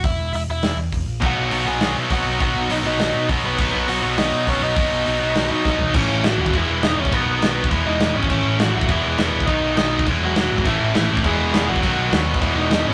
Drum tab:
CC |----------------|x---------------|----------------|x---------------|
HH |o---o---o---o---|----o---o---o---|o---o---o---o---|----o---o---o---|
SD |--------o-------|--------o-------|--------o-------|--------o-------|
FT |----------------|----------------|----------------|----------------|
BD |o-----------o---|o-----------o---|o-----------o---|o-----------o---|

CC |----------------|x---x---x---x---|x---x---x---x---|x---x---x---x---|
HH |o---o---o-------|----------------|----------------|----------------|
SD |--------o---o---|----o-------o---|----o-------o---|----o-------o---|
FT |--------------o-|----------------|----------------|----------------|
BD |o-----------o---|o------oo------o|o------oo------o|o------oo------o|

CC |x---x---x---x---|x---x---x---x---|x---x---x---x---|
HH |----------------|----------------|----------------|
SD |----o-------o---|----o-------o---|----o-------o---|
FT |----------------|----------------|----------------|
BD |o------oo------o|o------oo------o|o------oo-------|